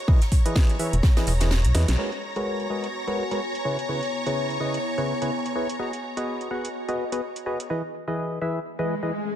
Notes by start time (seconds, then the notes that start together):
Already playing: C#5 A#5
0.08 E3 E4 G#4 B4 D#5, kick, open hi-hat
0.22 snare, closed hi-hat
0.32 kick, snare, closed hi-hat, open hi-hat
0.46 E3 E4 G#4 B4 D#5, closed hi-hat
0.55 kick, snare, closed hi-hat
0.69 closed hi-hat
0.79 E3 E4 G#4 B4 E5, closed hi-hat, open hi-hat
0.93 E1, closed hi-hat
1.03 kick, snare, closed hi-hat
1.17 E3 E4 G#4 B4 D#5, snare, closed hi-hat
1.27 E1, snare, closed hi-hat, open hi-hat
1.40 E3 E4 G#4 B4 D#5, snare, closed hi-hat
1.51 snare, closed hi-hat
1.65 B1, closed hi-hat
1.75 E2 E4 G#4 B4 D#5, snare, closed hi-hat, open hi-hat
1.88 B1, snare, closed hi-hat
1.99 G#3 B3 F#4 G#4 A#4 B4 C#5 A#5
2.12 F#4, snare, closed hi-hat
2.19 G#5
2.25 C#5
2.36 G#3 F#4 G#4 A#4 B4 C#5, closed hi-hat
2.60 closed hi-hat
2.70 G#3 F#4 G#4 A#4 B4 D#5
2.84 closed hi-hat
3.07 G#3 F#4 G#4 A#4 B4 C#5, closed hi-hat
3.31 G#3 F#4 G#4 A#4 B4 C#5, closed hi-hat
3.55 closed hi-hat
3.65 C#3 E4 G#4 B4 C#5
3.70 E4
3.79 snare, closed hi-hat
3.89 C#3 E4 G#4 B4 C#5
4.03 snare, closed hi-hat
4.13 snare
4.26 C#3 E4 G#4 B4 C#5, closed hi-hat
4.50 closed hi-hat
4.60 C#3 E4 G#4 B4 D#5, snare
4.74 closed hi-hat
4.98 C#3 E4 G#4 B4 C#5, closed hi-hat
5.22 C#3 E4 G#4 B4 C#5, snare, closed hi-hat
5.32 snare
5.38 snare
5.45 snare, closed hi-hat
5.51 snare
5.56 E4 G#4 B4 C#5
5.69 snare, closed hi-hat
5.79 B3 F#4 G#4 B4 D#5
5.93 snare, closed hi-hat
5.99 F#4
6.17 B3 F#4 G#4 B4 D#5, closed hi-hat
6.34 D#5
6.41 closed hi-hat
6.51 B3 F#4 G#4 B4 F#5
6.65 closed hi-hat
6.88 B3 F#4 G#4 B4 D#5, snare, closed hi-hat
7.12 B3 F#4 G#4 B4 D#5, closed hi-hat
7.36 closed hi-hat
7.46 F#4 G#4 B4 D#5
7.60 snare, closed hi-hat
7.70 E3 E4 G#4 B4 D#5
8.08 E3 E4 G#4 B4 D#5
8.41 E3 E4 G#4 B4 E5
8.65 swell
8.79 E3 E4 G#4 B4 D#5
9.03 E3 E4 G#4 B4 D#5